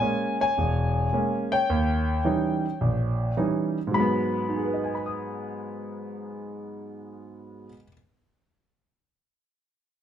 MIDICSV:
0, 0, Header, 1, 2, 480
1, 0, Start_track
1, 0, Key_signature, 5, "minor"
1, 0, Tempo, 561798
1, 1446, Time_signature, 4, 2, 24, 8
1, 8567, End_track
2, 0, Start_track
2, 0, Title_t, "Grand piano"
2, 0, Program_c, 0, 0
2, 0, Note_on_c, 0, 73, 58
2, 0, Note_on_c, 0, 80, 107
2, 6, Note_on_c, 0, 56, 47
2, 13, Note_on_c, 0, 58, 40
2, 14, Note_on_c, 0, 61, 54
2, 303, Note_off_c, 0, 80, 0
2, 304, Note_off_c, 0, 73, 0
2, 343, Note_off_c, 0, 56, 0
2, 347, Note_off_c, 0, 58, 0
2, 347, Note_off_c, 0, 61, 0
2, 349, Note_on_c, 0, 73, 57
2, 354, Note_on_c, 0, 80, 84
2, 493, Note_on_c, 0, 28, 63
2, 906, Note_off_c, 0, 28, 0
2, 963, Note_on_c, 0, 56, 46
2, 966, Note_on_c, 0, 58, 44
2, 970, Note_on_c, 0, 61, 49
2, 1263, Note_off_c, 0, 73, 0
2, 1298, Note_on_c, 0, 79, 89
2, 1302, Note_off_c, 0, 56, 0
2, 1303, Note_off_c, 0, 58, 0
2, 1304, Note_on_c, 0, 73, 56
2, 1305, Note_off_c, 0, 61, 0
2, 1328, Note_off_c, 0, 80, 0
2, 1450, Note_on_c, 0, 39, 65
2, 1865, Note_off_c, 0, 39, 0
2, 1918, Note_on_c, 0, 52, 48
2, 1922, Note_on_c, 0, 55, 41
2, 1925, Note_on_c, 0, 61, 41
2, 1930, Note_on_c, 0, 63, 55
2, 2259, Note_off_c, 0, 52, 0
2, 2261, Note_off_c, 0, 55, 0
2, 2262, Note_off_c, 0, 61, 0
2, 2265, Note_off_c, 0, 63, 0
2, 2402, Note_on_c, 0, 34, 58
2, 2821, Note_off_c, 0, 34, 0
2, 2857, Note_off_c, 0, 79, 0
2, 2860, Note_off_c, 0, 73, 0
2, 2880, Note_on_c, 0, 52, 44
2, 2883, Note_on_c, 0, 61, 38
2, 2883, Note_on_c, 0, 63, 50
2, 2884, Note_on_c, 0, 55, 40
2, 3220, Note_off_c, 0, 52, 0
2, 3221, Note_off_c, 0, 61, 0
2, 3221, Note_off_c, 0, 63, 0
2, 3222, Note_off_c, 0, 55, 0
2, 3308, Note_on_c, 0, 44, 57
2, 3345, Note_on_c, 0, 54, 52
2, 3369, Note_on_c, 0, 83, 66
2, 3376, Note_on_c, 0, 56, 56
2, 3415, Note_on_c, 0, 59, 64
2, 3836, Note_on_c, 0, 63, 37
2, 3899, Note_on_c, 0, 68, 38
2, 3974, Note_on_c, 0, 71, 36
2, 4046, Note_on_c, 0, 75, 34
2, 4136, Note_on_c, 0, 80, 33
2, 4215, Note_off_c, 0, 83, 0
2, 4228, Note_on_c, 0, 83, 33
2, 4323, Note_on_c, 0, 87, 30
2, 6528, Note_off_c, 0, 63, 0
2, 6539, Note_off_c, 0, 44, 0
2, 6557, Note_off_c, 0, 54, 0
2, 6560, Note_off_c, 0, 68, 0
2, 6573, Note_off_c, 0, 56, 0
2, 6592, Note_off_c, 0, 59, 0
2, 6597, Note_off_c, 0, 71, 0
2, 6633, Note_off_c, 0, 75, 0
2, 6678, Note_off_c, 0, 80, 0
2, 6724, Note_off_c, 0, 83, 0
2, 6772, Note_off_c, 0, 87, 0
2, 8567, End_track
0, 0, End_of_file